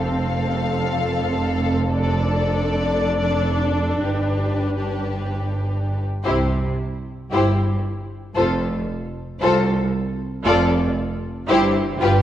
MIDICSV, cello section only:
0, 0, Header, 1, 2, 480
1, 0, Start_track
1, 0, Tempo, 520382
1, 1793, Time_signature, 4, 2, 24, 8
1, 3240, Tempo, 545951
1, 6600, Tempo, 520382
1, 11108, End_track
2, 0, Start_track
2, 0, Title_t, "Cello section"
2, 0, Program_c, 0, 48
2, 0, Note_on_c, 0, 41, 61
2, 3672, Note_off_c, 0, 41, 0
2, 3710, Note_on_c, 0, 43, 46
2, 5443, Note_off_c, 0, 43, 0
2, 5654, Note_on_c, 0, 48, 56
2, 6053, Note_off_c, 0, 48, 0
2, 6593, Note_on_c, 0, 43, 54
2, 6997, Note_off_c, 0, 43, 0
2, 7548, Note_on_c, 0, 41, 59
2, 7956, Note_off_c, 0, 41, 0
2, 8518, Note_on_c, 0, 36, 66
2, 8922, Note_off_c, 0, 36, 0
2, 9476, Note_on_c, 0, 41, 77
2, 9875, Note_off_c, 0, 41, 0
2, 10422, Note_on_c, 0, 43, 78
2, 10828, Note_off_c, 0, 43, 0
2, 10904, Note_on_c, 0, 43, 66
2, 11108, Note_off_c, 0, 43, 0
2, 11108, End_track
0, 0, End_of_file